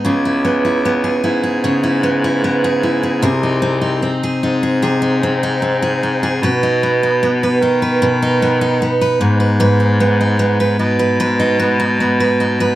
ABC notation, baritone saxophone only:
X:1
M:4/4
L:1/8
Q:1/4=75
K:G#phr
V:1 name="Baritone saxophone" clef=bass
C,,3 G,,4- G,, | ^B,,,2 z G,,4- G,, | B,,3 D,3 z G,,- | G,,3 B,,4- B,, |]